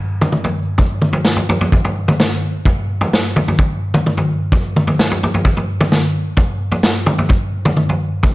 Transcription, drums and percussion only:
0.21 floor tom, mid tom
0.32 mid tom
0.44 floor tom
0.78 kick, floor tom
1.02 mid tom
1.13 floor tom
1.25 snare
1.36 floor tom
1.49 floor tom
1.61 floor tom
1.72 kick, floor tom
1.85 floor tom
2.08 floor tom, mid tom
2.20 snare, mid tom
2.65 kick, floor tom
3.01 floor tom
3.13 snare
3.36 floor tom, mid tom
3.48 floor tom
3.59 kick, floor tom
3.94 floor tom, mid tom
4.06 mid tom
4.17 floor tom
4.52 kick, floor tom
4.76 mid tom
4.87 floor tom
4.99 snare
5.11 floor tom
5.23 floor tom
5.34 floor tom
5.45 kick, floor tom
5.57 floor tom
5.81 floor tom, mid tom
5.92 snare, mid tom
6.37 kick, floor tom
6.72 floor tom
6.83 snare
7.06 floor tom, mid tom
7.18 floor tom
7.29 kick, floor tom
7.65 floor tom, mid tom
7.77 mid tom
7.89 floor tom
8.23 kick, floor tom

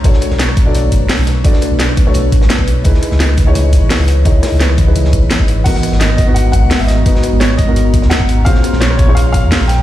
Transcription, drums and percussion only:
0.04 kick, closed hi-hat
0.13 snare
0.22 cross-stick, closed hi-hat
0.31 snare
0.39 snare, closed hi-hat
0.48 cross-stick
0.57 kick, closed hi-hat, open hi-hat
0.75 closed hi-hat
0.92 kick, closed hi-hat
1.09 snare, closed hi-hat, open hi-hat
1.27 snare, closed hi-hat, open hi-hat
1.44 kick, closed hi-hat
1.53 snare
1.62 cross-stick, closed hi-hat
1.79 snare, closed hi-hat
1.89 cross-stick
1.97 kick, closed hi-hat, open hi-hat
2.14 closed hi-hat
2.32 kick, closed hi-hat
2.41 snare
2.49 snare, closed hi-hat
2.59 kick
2.68 closed hi-hat, open hi-hat
2.85 kick, closed hi-hat
2.94 snare
3.03 cross-stick, closed hi-hat
3.11 snare
3.20 snare, closed hi-hat
3.29 cross-stick
3.37 kick, closed hi-hat, open hi-hat
3.55 closed hi-hat
3.73 kick, closed hi-hat
3.90 snare, closed hi-hat, open hi-hat
4.08 closed hi-hat, open hi-hat
4.25 kick, closed hi-hat
4.43 cross-stick, snare, closed hi-hat, open hi-hat
4.61 snare, closed hi-hat
4.69 cross-stick
4.78 kick, closed hi-hat, open hi-hat
4.96 closed hi-hat
5.05 snare
5.13 kick, closed hi-hat
5.30 snare, closed hi-hat
5.39 kick
5.48 closed hi-hat, open hi-hat
5.66 kick, closed hi-hat, crash
5.75 snare
5.83 cross-stick, closed hi-hat
5.92 snare
6.00 snare, closed hi-hat
6.10 cross-stick
6.18 kick, closed hi-hat, open hi-hat
6.36 closed hi-hat
6.53 kick, closed hi-hat
6.71 snare, closed hi-hat, open hi-hat
6.88 snare, closed hi-hat, open hi-hat
7.06 kick, closed hi-hat
7.16 snare
7.23 cross-stick, closed hi-hat
7.40 snare, closed hi-hat
7.50 cross-stick
7.59 kick, closed hi-hat, open hi-hat
7.76 closed hi-hat
7.94 kick, closed hi-hat
8.02 snare
8.11 snare, closed hi-hat
8.20 kick
8.29 closed hi-hat, open hi-hat
8.46 kick, closed hi-hat
8.55 snare
8.64 cross-stick, closed hi-hat
8.73 snare
8.81 snare, closed hi-hat
8.90 cross-stick
8.99 kick, closed hi-hat, open hi-hat
9.17 closed hi-hat
9.34 kick, closed hi-hat
9.52 snare, closed hi-hat, open hi-hat
9.69 snare, closed hi-hat, open hi-hat

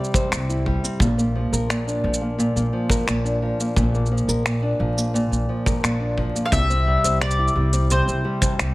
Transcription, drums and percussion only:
0.04 shaker
0.14 kick, shaker
0.32 finger snap, shaker
0.50 shaker
0.66 kick
0.85 shaker
1.00 kick, shaker
1.19 shaker
1.54 shaker
1.70 finger snap, shaker
1.88 shaker
2.14 shaker
2.40 shaker
2.57 shaker
2.90 kick, shaker
3.08 finger snap, shaker
3.26 shaker
3.60 shaker
3.76 kick, shaker
3.95 shaker
4.06 shaker
4.18 shaker
4.29 shaker
4.46 finger snap, shaker
4.98 shaker
5.16 shaker
5.33 shaker
5.66 kick, shaker
5.84 finger snap, shaker
6.18 kick
6.36 shaker
6.52 kick, closed hi-hat, shaker
6.71 shaker
7.04 closed hi-hat, shaker
7.21 finger snap, closed hi-hat
7.31 shaker
7.48 shaker
7.73 closed hi-hat, shaker
7.90 closed hi-hat, shaker
8.08 shaker
8.42 kick, closed hi-hat, shaker
8.59 finger snap, closed hi-hat, shaker

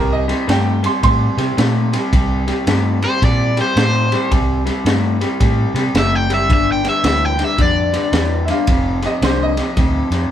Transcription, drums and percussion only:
0.29 snare, ride
0.49 snare, ride
0.84 snare, ride
1.03 kick, snare, ride
1.38 snare, ride
1.58 snare, ride
1.93 snare, ride
2.13 kick, snare, ride
2.48 snare, ride
2.67 snare, ride
3.02 snare, ride
3.22 kick, snare, ride
3.57 snare, ride
3.77 snare, ride
4.12 snare, ride
4.32 kick, snare, ride
4.67 snare, ride
4.86 snare, ride
5.21 snare, ride
5.40 kick, snare, ride
5.76 snare, ride
5.95 snare, ride
6.30 snare, ride
6.50 kick, snare, ride
6.85 snare, ride
7.04 snare, ride
7.39 snare, ride
7.58 kick, snare, ride
7.94 snare, ride
8.13 snare, ride
8.48 snare, ride
8.67 kick, snare, ride
9.02 snare, ride
9.22 snare, ride
9.57 snare, ride
9.77 kick, snare, ride
10.12 snare, ride

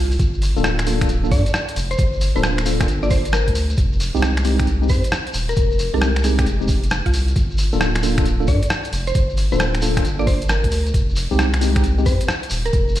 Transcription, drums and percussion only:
0.12 open hi-hat, shekere
0.19 kick, closed hi-hat, shekere
0.34 shekere
0.42 open hi-hat, shekere
0.57 shekere
0.64 cross-stick, shekere
0.79 finger snap, cross-stick, closed hi-hat, shekere
0.87 open hi-hat, shekere
1.01 finger snap, kick, closed hi-hat, shekere
1.09 closed hi-hat, shekere
1.24 shekere
1.31 kick, open hi-hat, shekere
1.46 closed hi-hat, shekere
1.54 cross-stick, shekere
1.68 closed hi-hat, shekere
1.76 open hi-hat, shekere
1.91 closed hi-hat, shekere
1.98 kick, closed hi-hat, shekere
2.13 shekere
2.21 open hi-hat, shekere
2.36 shekere
2.43 cross-stick, shekere
2.58 finger snap, closed hi-hat, shekere
2.66 open hi-hat, shekere
2.80 finger snap, kick, cross-stick, closed hi-hat, shekere
2.88 closed hi-hat, shekere
3.03 shekere
3.10 kick, open hi-hat, shekere
3.25 closed hi-hat, shekere
3.33 cross-stick, shekere
3.47 kick, closed hi-hat, shekere
3.55 open hi-hat, shekere
3.70 closed hi-hat, shekere
3.77 kick, closed hi-hat, shekere
3.92 shekere
4.00 open hi-hat, shekere
4.16 shekere
4.22 cross-stick, shekere
4.37 finger snap, cross-stick, closed hi-hat, shekere
4.44 open hi-hat, shekere
4.59 finger snap, kick, closed hi-hat, shekere
4.67 closed hi-hat, shekere
4.83 shekere
4.89 kick, open hi-hat, shekere
5.04 closed hi-hat, shekere
5.12 cross-stick, shekere
5.27 closed hi-hat, shekere
5.34 open hi-hat, shekere
5.49 closed hi-hat, shekere
5.57 kick, closed hi-hat, shekere
5.71 shekere
5.79 open hi-hat, shekere
5.95 shekere
6.01 cross-stick, shekere
6.16 finger snap, closed hi-hat, shekere
6.24 open hi-hat, shekere
6.39 finger snap, kick, cross-stick, closed hi-hat, shekere
6.46 closed hi-hat, shekere
6.61 shekere
6.68 kick, open hi-hat, shekere
6.83 closed hi-hat, shekere
6.90 cross-stick, shekere
7.06 kick, closed hi-hat, shekere
7.14 open hi-hat, shekere
7.28 closed hi-hat, shekere
7.36 kick, closed hi-hat, shekere
7.51 shekere
7.58 open hi-hat, shekere
7.72 shekere
7.81 cross-stick, shekere
7.95 finger snap, cross-stick, closed hi-hat, shekere
8.03 open hi-hat, shekere
8.18 finger snap, kick, closed hi-hat, shekere
8.26 closed hi-hat, shekere
8.40 shekere
8.48 kick, open hi-hat, shekere
8.63 closed hi-hat, shekere
8.69 cross-stick, shekere
8.84 closed hi-hat, shekere
8.93 open hi-hat, shekere
9.07 closed hi-hat, shekere
9.15 kick, closed hi-hat, shekere
9.29 shekere
9.37 open hi-hat, shekere
9.52 shekere
9.59 cross-stick, shekere
9.75 finger snap, closed hi-hat, shekere
9.82 open hi-hat, shekere
9.96 finger snap, kick, cross-stick, closed hi-hat, shekere
10.04 closed hi-hat, shekere
10.20 shekere
10.27 kick, open hi-hat, shekere
10.41 closed hi-hat, shekere
10.49 cross-stick, shekere
10.64 kick, closed hi-hat, shekere
10.71 open hi-hat, shekere
10.86 closed hi-hat, shekere
10.94 kick, closed hi-hat, shekere
11.09 shekere
11.16 open hi-hat, shekere
11.31 shekere
11.39 cross-stick, shekere
11.53 finger snap, cross-stick, closed hi-hat, shekere
11.61 open hi-hat, shekere
11.75 finger snap, kick, closed hi-hat, shekere
11.84 closed hi-hat, shekere
11.98 shekere
12.06 kick, open hi-hat, shekere
12.21 closed hi-hat, shekere
12.28 cross-stick, shekere
12.43 closed hi-hat, shekere
12.50 open hi-hat, shekere
12.65 closed hi-hat, shekere
12.73 kick, closed hi-hat, shekere
12.88 shekere
12.96 open hi-hat, shekere

